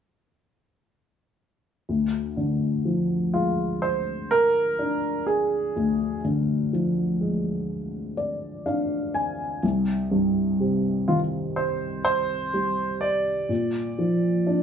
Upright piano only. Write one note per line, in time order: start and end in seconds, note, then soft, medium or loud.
1.89 5.72 D2 soft
2.37 4.27 D3 soft
2.85 4.75 F3 soft
3.34 5.23 G#3 soft
4.79 6.69 D4 soft
5.76 9.59 D2 soft
6.25 8.14 D3 soft
6.73 8.62 F3 soft
7.21 9.10 G#3 soft
8.17 8.62 D5 soft
8.66 9.60 D4 soft
8.66 9.11 F5 soft
9.14 9.59 G#5 soft
9.63 13.46 C2 soft
10.11 12.01 G2 soft
10.60 12.50 C3 soft
11.08 12.98 D#3 soft
12.54 13.47 G3 soft
13.49 14.63 A#2 soft
13.98 14.63 F3 soft
14.47 14.63 D4 soft